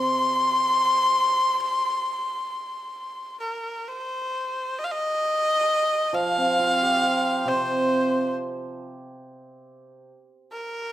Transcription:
Already playing: C3 C6
3.40 A#4
3.87 C5
4.78 D#5
4.84 F5
4.91 D#5
6.13 F3 F5
6.38 C4
6.59 F4
6.83 G4
7.03 C5
7.45 C3 C5
10.52 A#4

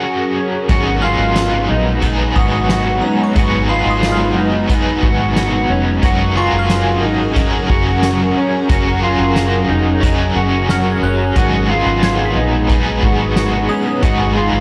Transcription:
Already playing: F#3 C#4 F#4 G#4 A#4 D#6
0.03 F#4
0.36 C#4
0.69 G#1 G#2 F#3 G#3 B3 D#4 F#4 G#4 B4, kick, closed hi-hat
1.02 F#3 B3 D#4 F4 G#4 F6
1.19 G#1
1.36 snare, closed hi-hat, tambourine
1.69 A#1 D#4
2.00 F#3 B3, kick, closed hi-hat
2.05 D#4 G#4
2.36 G#1 F#4 D#6, kick
2.69 F#4, snare, closed hi-hat, tambourine
3.01 C#4 A#5
3.23 C#6
3.35 G#1 G#2 F#3 G#3 B3 D#4 F#4 G#4, kick, closed hi-hat
3.69 F#3 B3 D#4 F4 G#4 B5
3.86 G#1
3.90 D#6
4.03 snare, closed hi-hat, tambourine
4.12 F6
4.36 F#1 D#4
4.67 F#3 B3, kick, closed hi-hat
4.72 D#4 G#4
5.02 G#1 F#4, kick
5.36 F#4, snare, closed hi-hat, tambourine
5.70 F1 C#4
6.02 F#1 F#3 C#4 F#4 G#4 A#4, kick, closed hi-hat
6.35 F4 F#4 G#4 A#4 C#6
6.53 F#1
6.59 F6
6.70 snare, closed hi-hat, tambourine
7.03 G#1 D#4
7.34 C#4 F#4, kick, closed hi-hat
7.39 G#4 A#4
7.69 F#1 F#4, kick
8.03 F#4, snare, closed hi-hat, tambourine
8.37 C#4
8.68 F#1 F#3 C#4 F#4 G#4 A#4, kick, closed hi-hat
9.02 F4 F#4 G#4 A#4
9.19 F#1
9.36 snare, closed hi-hat, tambourine
9.69 F1 D#4
10.01 C#4 F#4, kick, closed hi-hat
10.06 G#4 A#4
10.36 F#1 F#4
10.69 F#4 F6, snare, closed hi-hat, tambourine
10.92 G#6
11.03 F#1 C#4 F#6
11.24 A#6
11.36 G#1 G#2 F#3 G#3 B3 D#4 F#4 G#4 B4, kick, closed hi-hat
11.69 F#3 B3 D#4 F4 G#4
11.86 G#1
12.03 G#6, snare, closed hi-hat, tambourine
12.25 B6
12.36 A#1 D#4
12.67 F#3 B3, kick, closed hi-hat
12.72 D#4 G#4
13.03 G#1 F#4, kick
13.36 F#4, snare, closed hi-hat, tambourine
13.69 C#4 D#6
14.02 G#1 G#2 F#3 G#3 B3 D#4 F#4 G#4, kick, closed hi-hat
14.36 F#3 B3 D#4 F4 G#4
14.52 G#1

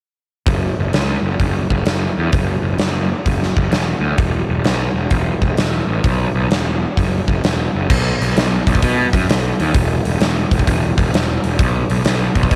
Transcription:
0.47 F#1, kick, open hi-hat
0.79 F#1
0.93 C#2, snare, open hi-hat
1.23 F#1
1.40 F#1, kick, open hi-hat
1.70 F#1, kick
1.85 F#1, snare, open hi-hat
2.18 E2
2.32 F#1, kick, open hi-hat
2.62 F#1
2.78 F#1, snare, open hi-hat
3.26 F#1, kick, open hi-hat
3.42 snare
3.57 F#1, kick
3.70 E1, snare, open hi-hat
4.00 D2
4.18 E1, kick, open hi-hat
4.49 E1
4.64 B1, snare, open hi-hat
4.94 E1
5.11 E1, kick, open hi-hat
5.41 E1, kick
5.57 E1, snare, open hi-hat
5.87 A1
6.04 B1, kick, open hi-hat
6.35 B1
6.50 E1, snare, open hi-hat
6.97 F#1, kick, open hi-hat
7.27 F#1, kick
7.44 E1, snare, open hi-hat
7.75 F#1
7.90 B1, kick, crash
8.21 B1, open hi-hat
8.36 B1, snare, open hi-hat
8.67 B1, kick, open hi-hat
8.75 kick
8.82 B2, kick, open hi-hat
9.13 F#2, kick, open hi-hat
9.29 B1, snare, open hi-hat
9.60 D#2, open hi-hat
9.74 E1, kick, open hi-hat
10.05 E1, open hi-hat
10.21 E1, snare, open hi-hat
10.51 E1, kick, open hi-hat
10.59 kick
10.67 E1, kick, open hi-hat
10.97 E1, kick, open hi-hat
11.14 E1, snare, open hi-hat
11.44 E1, open hi-hat
11.59 B1, kick, open hi-hat
11.90 B1, open hi-hat
12.05 B1, snare, open hi-hat
12.35 B1, kick, open hi-hat
12.43 kick
12.51 B2, kick, open hi-hat

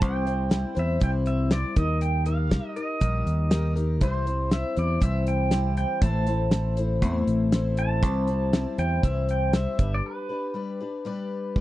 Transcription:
0.01 C2 C3 E3 G3 C4 E4 C5 G5, kick, closed hi-hat
0.25 G3 C4 E4 C5, closed hi-hat
0.49 G3 C4 E4 C5, snare, closed hi-hat
0.75 E2 G3 C4 E4 C5, closed hi-hat
0.79 E5
1.00 C2 C3 E3 G3 C4 E4 C5 G5, kick, closed hi-hat
1.26 E5, closed hi-hat
1.51 G3 C4 E4 C5 D5, snare, closed hi-hat
1.76 D#2 D#3 G3 D#4 G4 A#4 D#5, kick, closed hi-hat
2.01 G5, closed hi-hat
2.26 D#4 G4 A#4 F5, closed hi-hat
2.49 G3 D#4 G4 A#4, kick, snare, closed hi-hat
2.76 D#4 G4 A#4 D#5, closed hi-hat
3.00 A#1 D#3 G3 D#4 G4 A#4, kick, closed hi-hat
3.26 D#2, closed hi-hat
3.50 G3 D#4 G4 A#4, snare, closed hi-hat
3.76 D#4 G4 A#4, closed hi-hat
4.01 C2 C3 E3 G3 C4 E4 C5, kick, closed hi-hat
4.26 G3 C4 E4 C5, closed hi-hat
4.50 G3 C4 E4 C5 E5, snare, closed hi-hat
4.76 E2 G3 C4 E4 C5 D5, closed hi-hat
5.00 C2 C3 E3 G3 C4 E4 C5 E5, kick, closed hi-hat
5.27 G5, closed hi-hat
5.50 G3 C4 E4 C5, snare, closed hi-hat
5.77 G5, closed hi-hat
6.02 A1 A2 E3 A3 C4 E4 C5 A5, kick, closed hi-hat
6.27 A3 C4 E4 C5, closed hi-hat
6.51 A3 C4 E4 C5, snare, closed hi-hat
6.77 A3 C4 E4 C5, closed hi-hat
7.02 E2 A2 E3 A3 C4 E4 C5, kick, closed hi-hat
7.27 A1, closed hi-hat
7.52 A3 C4 E4 C5, snare, closed hi-hat
7.77 A5, closed hi-hat
8.03 C2 C3 E3 G3 C4 E4 C5, kick, closed hi-hat
8.27 G3 C4 E4 C5, closed hi-hat
8.53 G3 C4 E4 C5, snare, closed hi-hat
8.78 E2 G3 C4 E4 C5 G5, closed hi-hat
9.03 C2 C3 E3 G3 C4 E4 C5 E5, kick, closed hi-hat
9.29 G5, closed hi-hat
9.53 G3 C4 E4 C5 E5, snare, closed hi-hat
9.79 G1 G3 D4 G4 B4, kick, closed hi-hat
9.94 D5
10.06 B4
10.29 D4 G4 B4
10.54 G3 D4 G4 B4
10.81 D4 G4 B4
11.05 G3 D4 G4 B4
11.56 G3 D4 G4, kick

